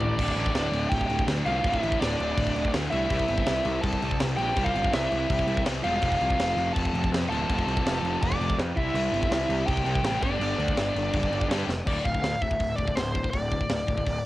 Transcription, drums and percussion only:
0.01 floor tom medium
0.19 kick loud
0.19 crash loud
0.19 crash medium
0.28 kick medium
0.37 crash medium
0.46 kick medium
0.55 snare loud
0.55 crash medium
0.73 crash medium
0.92 kick loud
0.92 crash medium
1.01 kick medium
1.10 crash medium
1.19 kick medium
1.28 snare loud
1.28 crash medium
1.46 crash medium
1.64 kick loud
1.64 crash medium
1.74 kick medium
1.83 crash medium
1.92 kick medium
2.02 snare loud
2.02 crash medium
2.20 crash medium
2.38 kick loud
2.38 crash medium
2.47 kick medium
2.56 crash medium
2.65 kick medium
2.73 snare loud
2.73 crash medium
2.92 crash medium
3.10 kick loud
3.10 crash medium
3.19 kick medium
3.28 crash medium
3.38 kick medium
3.46 snare loud
3.46 crash medium
3.65 crash medium
3.83 kick loud
3.83 crash medium
3.93 kick medium
4.02 crash medium
4.11 kick medium
4.20 snare loud
4.20 crash medium
4.38 crash medium
4.56 kick loud
4.56 crash medium
4.66 kick medium
4.75 crash medium
4.84 kick loud
4.93 snare loud
4.93 crash medium
5.12 crash medium
5.30 kick loud
5.30 crash medium
5.39 kick medium
5.48 crash medium
5.57 kick loud
5.66 snare loud
5.66 crash medium
5.84 crash medium
6.02 kick loud
6.02 crash medium
6.12 kick medium
6.21 crash medium
6.30 kick medium
6.40 snare loud
6.40 crash medium
6.58 crash medium
6.76 kick loud
6.76 crash medium
6.85 kick medium
6.95 crash medium
7.04 kick medium
7.14 snare loud
7.14 crash medium
7.32 crash medium
7.50 kick loud
7.50 crash medium
7.59 kick medium
7.68 crash medium
7.77 kick loud
7.86 snare loud
7.86 crash medium
8.05 crash medium
8.23 kick loud
8.23 crash medium
8.32 kick medium
8.41 crash medium
8.50 kick medium
8.59 snare loud
8.59 crash medium
8.77 kick loud
8.77 crash medium
8.95 crash loud
9.14 crash medium
9.23 kick medium
9.32 snare loud
9.32 crash medium
9.50 crash medium
9.68 kick loud
9.68 crash medium
9.77 kick medium
9.86 crash medium
9.96 kick medium
10.04 snare loud
10.04 crash medium
10.23 kick loud
10.23 crash medium
10.41 crash medium
10.60 crash medium
10.68 kick medium
10.77 snare loud
10.77 crash medium
10.96 crash medium
11.13 kick loud
11.13 crash medium
11.23 kick medium
11.33 crash medium
11.41 kick medium
11.51 snare loud
11.51 crash medium
11.69 snare medium
11.87 kick loud
11.87 crash loud
12.05 kick medium
12.14 kick medium
12.23 snare loud
12.23 open hi-hat medium
12.42 kick medium
12.51 kick medium
12.60 kick medium
12.60 open hi-hat medium
12.78 kick medium
12.87 kick medium
12.96 snare loud
12.96 open hi-hat medium
13.15 kick medium
13.24 kick medium
13.33 kick loud
13.33 open hi-hat medium
13.52 kick medium
13.61 kick medium
13.69 snare loud
13.69 open hi-hat medium
13.88 kick medium
13.97 kick medium
14.06 kick medium
14.06 open hi-hat medium

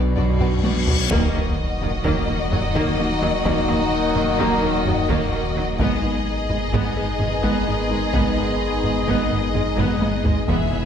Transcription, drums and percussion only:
0.17 taiko low-mid medium
0.41 taiko low-mid medium
0.64 taiko high medium
0.87 taiko low medium
1.11 taiko loud
1.81 taiko low-mid medium
2.05 taiko medium
2.52 taiko low-mid medium
2.75 taiko medium
3.23 taiko rim soft
3.45 taiko loud
3.69 taiko rim soft
4.16 taiko low-mid medium
4.39 taiko medium
4.63 taiko rim soft
4.86 taiko low-mid medium
5.09 taiko medium
5.79 taiko loud
6.50 taiko low-mid medium
6.73 taiko medium
7.20 taiko low-mid medium
7.43 taiko medium
8.14 taiko loud
8.84 taiko low-mid medium
9.07 taiko medium
9.55 taiko low-mid medium
9.78 taiko low-mid medium
10.02 taiko high medium
10.25 taiko low medium
10.49 taiko medium

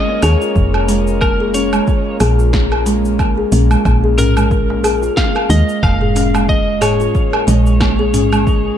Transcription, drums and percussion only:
0.22 open hi-hat medium
0.22 low woodblock medium
0.22 shaker medium
0.42 shaker soft
0.56 kick loud
0.56 shaker soft
0.74 low woodblock medium
0.88 open hi-hat medium
0.88 shaker medium
1.07 shaker soft
1.21 kick loud
1.21 low woodblock medium
1.21 shaker soft
1.54 open hi-hat medium
1.54 shaker medium
1.73 low woodblock medium
1.73 shaker soft
1.87 kick loud
1.87 shaker soft
2.20 open hi-hat medium
2.20 low woodblock medium
2.20 shaker medium
2.39 shaker soft
2.53 kick loud
2.53 snare medium
2.53 shaker soft
2.72 low woodblock medium
2.86 open hi-hat medium
2.86 shaker medium
3.05 shaker soft
3.19 kick loud
3.19 low woodblock medium
3.19 shaker soft
3.52 open hi-hat medium
3.52 shaker medium
3.71 low woodblock medium
3.71 shaker soft
3.85 kick loud
3.85 low woodblock medium
3.85 shaker soft
4.18 open hi-hat medium
4.18 darbuka ka soft
4.18 darbuka tek medium
4.18 darbuka dum loud
4.18 shaker medium
4.37 low woodblock medium
4.37 shaker soft
4.51 kick loud
4.51 shaker soft
4.70 darbuka tek medium
4.84 open hi-hat medium
4.84 darbuka ka soft
4.84 low woodblock medium
4.84 shaker medium
5.02 darbuka ka soft
5.02 shaker soft
5.17 kick loud
5.17 snare medium
5.17 shaker soft
5.36 low woodblock medium
5.50 open hi-hat medium
5.50 shaker medium
5.69 shaker soft
5.83 kick loud
5.83 darbuka tek medium
5.83 low woodblock medium
5.83 shaker soft
6.01 darbuka dum medium
6.16 open hi-hat medium
6.16 darbuka tek medium
6.16 shaker medium
6.34 darbuka tek medium
6.34 low woodblock medium
6.34 shaker soft
6.49 kick loud
6.49 shaker soft
6.82 open hi-hat medium
6.82 darbuka ka soft
6.82 darbuka dum medium
6.82 low woodblock medium
6.82 shaker medium
7.01 shaker soft
7.15 kick loud
7.15 shaker soft
7.33 darbuka tek medium
7.33 low woodblock medium
7.48 open hi-hat medium
7.48 darbuka ka medium
7.48 shaker medium
7.66 darbuka ka soft
7.66 shaker soft
7.81 kick loud
7.81 snare medium
7.81 low woodblock medium
7.81 shaker soft
8.14 open hi-hat medium
8.14 darbuka dum medium
8.14 shaker medium
8.33 low woodblock medium
8.33 shaker soft
8.47 kick loud
8.47 shaker soft

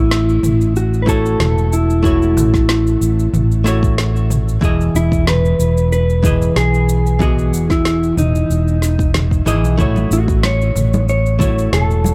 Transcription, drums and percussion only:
0.11 snare loud
0.11 cabasa soft
0.29 cabasa soft
0.43 mid tom medium
0.43 cabasa medium
0.61 cabasa soft
0.76 cabasa soft
0.94 cabasa soft
1.07 kick loud
1.07 cabasa medium
1.26 cabasa soft
1.40 snare medium
1.40 mid tom medium
1.40 cabasa soft
1.58 cabasa soft
1.73 cabasa medium
1.90 cabasa soft
2.04 kick loud
2.04 cabasa soft
2.22 cabasa soft
2.37 mid tom medium
2.37 cabasa medium
2.54 kick loud
2.54 snare soft
2.54 cabasa soft
2.69 snare loud
2.69 cabasa soft
2.87 cabasa soft
3.02 cabasa medium
3.19 cabasa soft
3.34 mid tom medium
3.34 cabasa soft
3.52 cabasa soft
3.66 snare soft
3.66 cabasa medium
3.83 kick loud
3.83 cabasa soft
3.98 snare medium
3.98 cabasa soft
4.16 cabasa soft
4.30 mid tom medium
4.30 cabasa medium
4.49 cabasa soft
4.62 kick loud
4.62 cabasa soft
4.81 cabasa soft
4.96 cabasa medium
5.12 kick loud
5.12 cabasa soft
5.27 snare loud
5.27 mid tom medium
5.27 cabasa soft
5.45 cabasa soft
5.60 cabasa medium
5.77 cabasa soft
5.92 cabasa soft
6.10 cabasa soft
6.24 kick loud
6.24 mid tom medium
6.24 cabasa medium
6.42 cabasa soft
6.56 snare medium
6.56 cabasa soft
6.74 cabasa soft
6.89 cabasa medium
7.06 cabasa soft
7.20 kick loud
7.20 mid tom medium
7.20 cabasa soft
7.39 cabasa soft
7.54 cabasa medium
7.70 kick loud
7.70 snare soft
7.70 cabasa soft
7.85 snare loud
7.85 cabasa soft
8.03 cabasa soft
8.17 mid tom medium
8.17 cabasa medium
8.35 cabasa soft
8.51 cabasa soft
8.68 cabasa soft
8.82 snare soft
8.82 cabasa medium
8.99 kick loud
8.99 cabasa soft
9.14 snare medium
9.14 mid tom medium
9.14 cabasa soft
9.31 kick medium
9.31 cabasa soft
9.47 cabasa medium
9.65 cabasa soft
9.79 kick loud
9.79 mid tom medium
9.79 cabasa soft
9.96 high conga medium
9.96 cabasa soft
10.12 cabasa medium
10.28 kick loud
10.28 cabasa soft
10.43 snare medium
10.43 high conga medium
10.43 cabasa soft
10.61 cabasa soft
10.76 mid tom medium
10.76 cabasa medium
10.94 high conga loud
10.94 cabasa soft
11.09 cabasa soft
11.26 cabasa soft
11.40 kick medium
11.40 high conga medium
11.40 low conga medium
11.40 cabasa medium
11.59 cabasa soft
11.73 snare medium
11.73 mid tom medium
11.73 cabasa soft
11.91 cabasa soft
12.04 high conga loud
12.04 cabasa medium

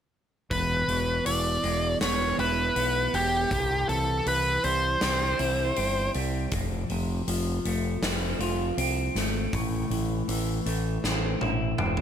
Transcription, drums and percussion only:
0.51 kick medium
0.51 open hi-hat medium
0.89 open hi-hat soft
1.26 open hi-hat medium
1.64 open hi-hat soft
2.01 snare medium
2.01 open hi-hat medium
2.39 open hi-hat soft
2.76 open hi-hat medium
3.14 open hi-hat soft
3.51 kick loud
3.51 open hi-hat medium
3.89 open hi-hat soft
4.26 open hi-hat medium
4.64 open hi-hat soft
5.01 snare medium
5.01 open hi-hat medium
5.39 open hi-hat soft
5.76 open hi-hat medium
6.14 open hi-hat soft
6.51 kick loud
6.51 open hi-hat medium
6.89 open hi-hat soft
7.28 open hi-hat medium
7.65 open hi-hat soft
8.02 snare medium
8.02 open hi-hat medium
8.40 open hi-hat soft
8.78 open hi-hat medium
9.16 snare soft
9.16 open hi-hat soft
9.53 kick medium
9.53 open hi-hat medium
9.91 open hi-hat soft
10.29 open hi-hat medium
10.66 open hi-hat soft
11.04 snare soft
11.41 high tom medium
11.78 mid tom medium
11.97 mid tom medium

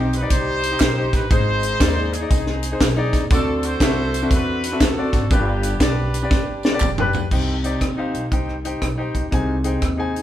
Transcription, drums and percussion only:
0.13 closed hi-hat medium
0.13 tambourine medium
0.30 kick loud
0.30 closed hi-hat loud
0.30 tambourine medium
0.63 closed hi-hat medium
0.63 tambourine medium
0.80 kick medium
0.80 snare loud
0.80 clap loud
0.80 closed hi-hat medium
0.80 tambourine loud
1.13 kick medium
1.13 snare soft
1.13 closed hi-hat medium
1.13 tambourine medium
1.30 kick loud
1.30 closed hi-hat medium
1.30 tambourine medium
1.63 closed hi-hat medium
1.63 tambourine medium
1.80 kick medium
1.80 snare loud
1.80 clap loud
1.80 closed hi-hat loud
1.80 tambourine loud
2.13 closed hi-hat medium
2.13 tambourine medium
2.31 kick loud
2.31 closed hi-hat medium
2.31 tambourine medium
2.47 snare soft
2.63 closed hi-hat medium
2.63 tambourine medium
2.81 kick medium
2.81 snare loud
2.81 clap loud
2.81 closed hi-hat medium
2.81 tambourine loud
3.13 kick medium
3.13 snare soft
3.13 closed hi-hat medium
3.13 tambourine medium
3.30 kick loud
3.30 closed hi-hat medium
3.30 tambourine medium
3.63 closed hi-hat medium
3.63 tambourine medium
3.80 kick medium
3.80 snare loud
3.80 clap loud
3.80 closed hi-hat medium
3.80 tambourine medium
4.14 closed hi-hat medium
4.14 tambourine medium
4.31 kick loud
4.31 closed hi-hat loud
4.31 tambourine medium
4.64 closed hi-hat medium
4.64 tambourine medium
4.81 kick medium
4.81 snare loud
4.81 clap medium
4.81 closed hi-hat medium
4.81 tambourine loud
5.13 kick medium
5.13 snare soft
5.13 closed hi-hat medium
5.13 tambourine medium
5.31 kick loud
5.31 closed hi-hat medium
5.31 tambourine medium
5.63 closed hi-hat medium
5.63 tambourine medium
5.80 kick medium
5.80 snare loud
5.80 clap medium
5.80 closed hi-hat loud
5.80 tambourine medium
6.14 closed hi-hat medium
6.14 tambourine medium
6.31 kick loud
6.31 snare medium
6.31 tambourine medium
6.63 snare medium
6.63 tambourine medium
6.80 kick medium
6.80 clap loud
6.80 mid tom medium
6.80 tambourine medium
6.98 floor tom loud
7.13 floor tom loud
7.13 tambourine medium
7.31 kick medium
7.31 crash medium
7.64 closed hi-hat medium
7.81 kick medium
7.81 cross-stick loud
7.81 closed hi-hat medium
8.14 closed hi-hat medium
8.32 kick loud
8.32 closed hi-hat medium
8.49 cross-stick soft
8.65 closed hi-hat medium
8.82 kick medium
8.82 cross-stick loud
8.82 closed hi-hat medium
9.15 kick medium
9.15 closed hi-hat medium
9.32 kick medium
9.32 closed hi-hat medium
9.64 closed hi-hat medium
9.82 kick medium
9.82 cross-stick medium
9.82 closed hi-hat medium
10.16 closed hi-hat soft

